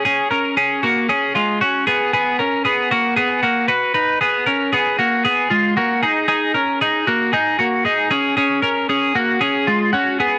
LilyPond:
\new Staff \with { instrumentName = "Clean electric guitar" } { \time 4/4 \key cis \mixolydian \tempo 4 = 115 <cis' gis'>8 <cis' ais'>8 <cis' gis'>8 <ais fis'>8 <cis' gis'>8 <gis eis'>8 <cis' fis'>8 <b gis'>8 | <b gis'>8 <cis' ais'>8 <b gis'>8 <ais fis'>8 <b gis'>8 <ais fis'>8 <fis' b'>8 <dis' b'>8 | <b gis'>8 <cis' ais'>8 <b gis'>8 <ais fis'>8 <b gis'>8 <gis eis'>8 <ais fis'>8 <dis' gis'>8 | <dis' gis'>8 <cis' ais'>8 <dis' gis'>8 <ais fis'>8 <dis' gis'>8 <ais fis'>8 <dis' gis'>8 <cis' gis'>8 |
<cis' gis'>8 <cis' ais'>8 <cis' gis'>8 <ais fis'>8 <cis' gis'>8 <gis eis'>8 <cis' fis'>8 <b gis'>8 | }